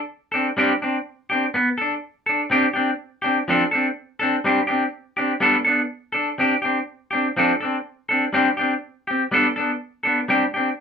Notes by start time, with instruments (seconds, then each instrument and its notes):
0.32 clean electric guitar C4 D4 A4
0.57 clean electric guitar G3 C4 D4 G4
0.82 clean electric guitar C4 D4
1.30 clean electric guitar C4 D4 G4
1.54 clean electric guitar B3, muted clean electric guitar stroke
1.78 clean electric guitar D4 A4
2.26 clean electric guitar D4 A4
2.50 clean electric guitar C4 D4 G4, muted clean electric guitar stroke
2.73 clean electric guitar C4 D4 G4
3.22 clean electric guitar C4 D4 G4
3.48 clean electric guitar F3 C4 D4 A4
3.71 clean electric guitar C4 D4 A4
4.19 clean electric guitar C4 D4 A4
4.44 clean electric guitar G3 C4 D4 G4
4.67 clean electric guitar C4 D4 G4
5.17 clean electric guitar C4 D4 G4
5.40 clean electric guitar G3 B3 D4 A4
5.65 clean electric guitar B3 D4 A4
6.12 clean electric guitar D4 A4, muted clean electric guitar stroke
6.38 clean electric guitar C4 D4 G4, muted clean electric guitar stroke
6.62 clean electric guitar C4 D4 G4
7.11 clean electric guitar C4 D4 G4
7.37 clean electric guitar F3 C4 D4 A4
7.61 clean electric guitar C4 D4 A4
8.09 clean electric guitar C4 D4 A4
8.33 clean electric guitar G3 C4 D4 G4
8.57 clean electric guitar C4 D4 G4
9.07 clean electric guitar C4 G4
9.31 clean electric guitar G3 B3 D4 A4
9.56 clean electric guitar B3 D4 A4
10.03 clean electric guitar B3 D4 A4
10.28 clean electric guitar G3 C4 D4 G4
10.54 clean electric guitar C4 D4 G4